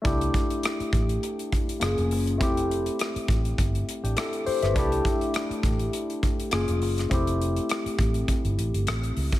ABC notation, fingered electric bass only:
X:1
M:4/4
L:1/16
Q:"Swing 16ths" 1/4=102
K:C
V:1 name="Fingered electric bass" clef=bass
C,,2 z4 A,,,2 z4 ^F,,, ^E,,, F,,,2 | F,,,4 z2 A,,,2 G,,,2 z A,,, z3 G,,, | C,,2 z4 A,,,2 z4 ^F,,, ^E,,, F,,,2 | F,,,4 z2 A,,,2 z G,,, A,,, G,,, A,,,2 _D,, z |]